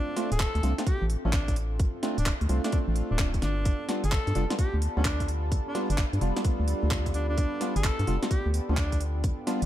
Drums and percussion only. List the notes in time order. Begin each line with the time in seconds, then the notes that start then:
0.17 snare, open hi-hat
0.32 closed hi-hat
0.40 kick, clap
0.55 closed hi-hat
0.63 open hi-hat
0.78 snare, closed hi-hat
0.87 kick, closed hi-hat
1.10 open hi-hat
1.33 kick, clap
1.48 kick, closed hi-hat
1.56 open hi-hat
1.80 kick, closed hi-hat
2.03 snare, open hi-hat
2.18 closed hi-hat
2.26 kick, clap
2.41 closed hi-hat
2.49 open hi-hat
2.64 snare, closed hi-hat
2.72 kick, closed hi-hat
2.96 open hi-hat
3.19 kick, clap
3.34 kick, closed hi-hat
3.42 snare, open hi-hat
3.65 kick, closed hi-hat
3.89 snare, open hi-hat
4.04 closed hi-hat
4.12 kick, clap
4.27 closed hi-hat
4.35 open hi-hat
4.50 snare, closed hi-hat
4.59 kick, closed hi-hat
4.82 open hi-hat
5.05 kick, clap
5.20 kick, closed hi-hat
5.28 open hi-hat
5.52 kick, closed hi-hat
5.75 snare, open hi-hat
5.90 closed hi-hat
5.98 kick, clap
6.13 closed hi-hat
6.21 open hi-hat
6.36 snare, closed hi-hat
6.44 kick, closed hi-hat
6.68 open hi-hat
6.91 kick, clap
7.06 kick, closed hi-hat
7.14 open hi-hat
7.38 kick, closed hi-hat
7.61 snare, open hi-hat
7.76 closed hi-hat
7.84 kick, clap
7.99 closed hi-hat
8.07 open hi-hat
8.23 snare, closed hi-hat
8.31 kick, closed hi-hat
8.54 open hi-hat
8.77 kick, clap
8.92 kick, closed hi-hat
9.01 open hi-hat
9.24 kick, closed hi-hat
9.47 snare, open hi-hat
9.62 closed hi-hat